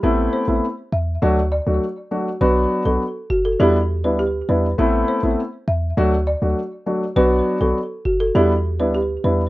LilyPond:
<<
  \new Staff \with { instrumentName = "Marimba" } { \time 4/4 \key a \dorian \tempo 4 = 101 r8 c''16 r8. e''8 r8 d''16 r4 r16 | b'16 r8 a'16 r8 fis'16 a'16 g'16 r8 b'16 g'16 r16 b'16 r16 | r8 c''16 r8. e''8 r8 d''16 r4 r16 | b'16 r8 a'16 r8 fis'16 a'16 g'16 r8 b'16 g'16 r16 b'16 r16 | }
  \new Staff \with { instrumentName = "Grand piano" } { \time 4/4 \key a \dorian <a b c' e'>8. <a b c' e'>16 r4 <fis a d' fis'>16 r8 <fis a d' fis'>16 r8 <fis a d' fis'>16 r16 | <fis b d' fis'>8. <fis b d' fis'>16 r4 <g b d' e'>16 r8 <g b d' e'>16 r8 <g b d' e'>16 r16 | <a b c' e'>8. <a b c' e'>16 r4 <fis a d' fis'>16 r8 <fis a d' fis'>16 r8 <fis a d' fis'>16 r16 | <fis b d' fis'>8. <fis b d' fis'>16 r4 <g b d' e'>16 r8 <g b d' e'>16 r8 <g b d' e'>16 r16 | }
  \new Staff \with { instrumentName = "808-style bass" } { \clef bass \time 4/4 \key a \dorian a,,8 r16 a,,16 r8 e,8 d,8. d,16 r4 | b,,8 r16 b,,16 r8 fis,,8 e,8. d,8. e,8 | a,,8 r16 a,,16 r8 e,8 d,8. d,16 r4 | b,,8 r16 b,,16 r8 fis,,8 e,8. d,8. e,8 | }
>>